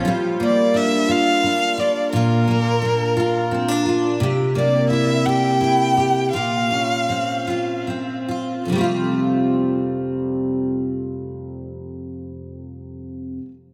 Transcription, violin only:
\new Staff \with { instrumentName = "Violin" } { \time 6/8 \key f \major \tempo 4. = 54 r8 d''8 e''8 f''4 d''8 | bes'2~ bes'8 r8 | r8 d''8 e''8 g''4. | f''2 r4 |
r2. | r2. | }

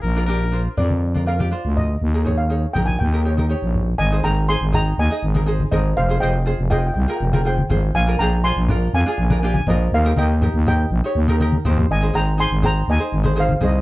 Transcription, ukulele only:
\new Staff \with { instrumentName = "Ukulele" } { \time 4/4 \key aes \major \tempo 4 = 122 r16 <d' f' bes'>16 <d' f' g'>16 r16 <d' f' c''>16 r16 <d' f' bes'>8 r16 <d' f' bes'>16 <d' f' bes'>16 <d' f' g'>16 <d' f' c''>8. r16 | r16 <ees' aes' bes'>16 <ees' aes' des''>16 r16 <ees' aes' des''>16 r16 <ees' aes' bes'>8 r16 <ees' g' bes'>16 <ees' g' des''>16 <ees' g' bes'>16 <ees' g' des''>8. r16 | r16 <ees' aes' c''>16 <ees' aes' bes'>16 r16 <ees' aes' c''>16 r16 <ees' aes' ees''>8 r16 <ees' aes' ees''>16 r16 <ees' aes' bes'>16 <ees' aes' c''>16 r16 <ees' aes' bes'>8 | r16 <f' aes' c''>16 <f' aes' c''>16 r16 <f' aes' c''>16 r16 <f' aes' c''>8 r16 <f' aes' bes'>16 r16 <f' aes' bes'>16 <f' aes' c''>16 r16 <f' aes' c''>8 |
r16 <d' f' bes'>16 <d' f' aes'>16 r16 <d' f' c''>16 r16 <d' f' bes'>8 r16 <d' f' aes'>16 r16 <d' f' bes'>16 <d' f' g'>16 r16 <d' f' bes'>8 | r16 <ees' g' bes'>16 <ees' g' bes'>16 r16 <ees' g' bes'>16 r16 <ees' g' bes'>8 r16 <ees' g' des''>16 r16 <ees' g' bes'>16 <ees' g' bes'>16 r16 <ees' g' c''>8 | r16 <ees' aes' c''>16 <ees' aes' c''>16 r16 <ees' aes' c''>16 r16 <ees' aes' c''>8 r16 <ees' aes' c''>16 r16 <ees' aes' c''>16 <ees' aes' c''>16 r16 <ees' aes' c''>8 | }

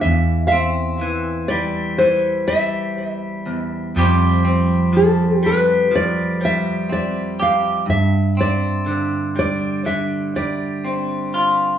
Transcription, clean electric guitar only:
\new Staff \with { instrumentName = "Clean electric guitar" } { \clef bass \time 4/4 \key c \major \tempo 4 = 61 << { e'8 c'4 g4 g4. | <f g c' g'>8 c'4 g4 g8 c'8 g'8 | r8 c'4 g4 g8 c'8 f'8 | } \\ { e,4 e4 e4. e,8 | f,4 f4 f2 | g,4 d4 d2 | } >> }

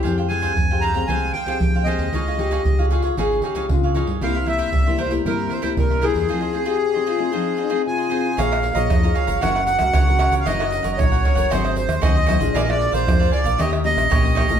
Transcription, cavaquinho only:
\new Staff \with { instrumentName = "Cavaquinho" } { \time 4/4 \key f \minor \tempo 4 = 115 <aes' c'' f'' g''>16 <c'' f'' g''>16 <aes' c'' f'' g''>16 <aes' c'' f'' g''>16 r16 <c'' f'' g''>16 <aes' c'' f'' g''>16 <c'' f'' g''>16 <aes' c'' f'' g''>8 <aes' c'' f'' g''>16 <aes' c'' f'' g''>16 r16 <c'' f'' g''>16 <aes' c'' f'' g''>8 | <ees' aes' des'' f''>16 <aes' des'' f''>16 <ees' aes' des'' f''>16 <ees' aes' des'' f''>16 r16 <aes' des'' f''>16 <ees' aes' des'' f''>16 <aes' des'' f''>16 <ees' aes' des'' f''>8 <ees' aes' des'' f''>16 <ees' aes' des'' f''>16 r16 <aes' des'' f''>16 <ees' aes' des'' f''>8 | <e' bes' c'' e''>16 <bes' c'' e''>16 <e' bes' c'' e''>16 <e' bes' c'' e''>16 r16 <bes' c'' e''>16 <e' bes' c'' e''>16 <bes' c'' e''>16 <e' bes' c'' e''>8 <e' bes' c'' e''>16 <e' bes' c'' e''>16 r16 <bes' c'' e''>16 <e' bes' c'' e''>8 | <f' aes' c'' ees''>16 <aes' c'' ees''>16 <f' aes' c'' ees''>16 <f' aes' c'' ees''>16 r16 <aes' c'' ees''>16 <f' aes' c'' ees''>16 <aes' c'' ees''>16 <f' aes' c'' ees''>8 <f' aes' c'' ees''>16 <f' aes' c'' ees''>16 r16 <aes' c'' ees''>16 <f' aes' c'' ees''>8 |
\key bes \minor <aes' des'' f'' bes''>16 <des'' f'' bes''>16 r16 <des'' f'' bes''>8 <des'' f'' bes''>16 <aes' des'' f'' bes''>16 <des'' f'' bes''>16 <ges' bes' des'' ges''>16 <bes' des'' ges''>16 r8 <ges' bes' des'' ges''>16 <bes' des'' ges''>16 <ges' bes' des'' ges''>16 <bes' des'' ges''>16 | <ees' bes' des'' ges''>16 <bes' des'' ges''>16 r16 <bes' des'' ges''>8 <bes' des'' ges''>16 <ees' bes' des'' ges''>16 <bes' des'' ges''>16 <ges' aes' c'' ees''>16 <aes' c'' ees''>16 r8 <ges' aes' c'' ees''>16 <aes' c'' ees''>16 <ges' aes' c'' ees''>16 <aes' c'' ees''>16 | <aes' bes' d'' f''>16 <bes' d'' f''>16 r16 <bes' d'' f''>8 <bes' d'' f''>16 <aes' bes' d'' f''>16 <bes' d'' f''>16 <ees' g' des'' ees''>16 <g' des'' ees''>16 r8 <ees' g' des'' ees''>16 <g' des'' ees''>16 <ees' g' des'' ees''>16 <g' des'' ees''>16 | }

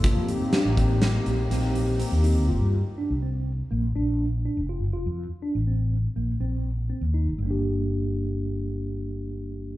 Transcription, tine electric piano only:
\new Staff \with { instrumentName = "Tine electric piano" } { \time 5/4 \key g \minor \tempo 4 = 123 f'4 d'8 c'4 bes8 c'4 c'8 ees'8 | f'4 d'8 c'4 bes8 d'4 d'8 f'8 | f'4 d'8 c'4 bes8 c'4 c'8 ees'8 | <g bes d' g'>1~ <g bes d' g'>4 | }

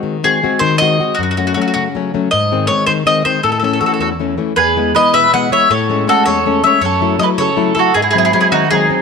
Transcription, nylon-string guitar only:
\new Staff \with { instrumentName = "Nylon-string guitar" } { \clef bass \time 6/8 \key gis \phrygian \tempo 4. = 106 <dis gis bis fis'>8 <gis bis fis'>8 <gis bis fis'>8 dis8 <gis bis fis'>8 <gis bis fis'>8 | fis,8 <fis a cis'>8 <fis a cis'>8 cis8 <fis a cis'>8 <fis a cis'>8 | gis,8 <dis gis bis>8 <dis gis bis>8 dis8 <dis gis bis>8 <dis gis bis>8 | a,8 <e a cis'>8 <e a cis'>8 e,8 <e a cis'>8 <e a cis'>8 |
e,8 <e gis b>8 <e gis b>8 b,8 <e gis b>8 <e gis b>8 | a,8 <gis a cis'>8 <gis a cis'>8 e,8 <gis a cis'>8 <gis a cis'>8 | fis,8 <fis a e'>8 <fis a e'>8 cis8 <fis a e'>8 <fis a e'>8 | gis,8 <fis gis bis>8 <fis gis bis>8 dis8 <fis gis bis>8 <fis gis bis>8 | }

